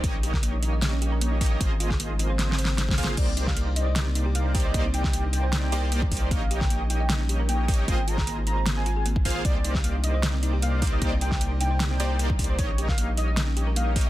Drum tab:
CC |------------------------------------------------------------------------------------------------|------------------------------------------------------------------------------------------------|x-----------------------------------------------------------------------------------------------|------------------------------------------------------------------------------------------------|
HH |x-----------x-----------x-----------x-----------x-----------x-----------x-----------o--x--------|x-----------x-----------x-----------x-----------x-----------x-----------x-----------o--x--------|x-----------x-----------x-----------x-----------x-----------x-----------x-----------o--x--------|x-----------x-----------x-----------x-----------x-----------x-----------x-----------o--x--------|
SD |------------------o-----------------------------o-----------------------------------------------|------------------o-----------------------------o-------o-------o-------o-------o-------o-------|------------------o-----------------------------o-----------------------------------------------|------------------o-----------------------------o-----------------------------------------------|
BD |o-----------------o-----------------------------------------------------------------o-----------|o-----------------o-----------------------------------------------------------o-----o-----------|o-----------------o-----------------------------------------------------------------o-----------|o-----------------o-----------------------------------------------------------o-----o-----------|

CC |------------------------------------------------------------------------------------------------|------------------------------------------------------------------------------------------------|------------------------------------------------------------------------------------------------|------------------------------------------------------------------------------------------------|
HH |x-----------x-----------x-----------x-----------x-----------x-----------x-----------o--x--------|x-----------x-----------x-----------x-----------x-----------x-----------x-----------o--x--------|x-----------x-----------x-----------x-----------x-----------x-----------x-----------o--x--------|x-----------x-----------x-----------x-----------x-----------x-----------x-----------o--x--------|
SD |------------------o-----------------------------o-----------------------------------------------|------------------o-----------------------------o-----------------------------------------------|------------------o-----------------------------o-----------------------------------------------|------------------o-----------------------------o-----------------------------------------------|
BD |o-----------------o-----------------------------------------------------------------o-----------|o-----------------o-----------------------------------------------------------o-----o-----------|o-----------------o-----------------------------------------------------------------o-----------|o-----------------o-----------------------------------------------------------o-----o-----------|

CC |------------------------------------------------------------------------------------------------|
HH |x-----------x-----------x-----------x-----------x-----------x-----------x-----------o--x--------|
SD |------------------o-----------------------------o-----------------------------------------------|
BD |o-----------------o-----------------------------------------------------------------o-----------|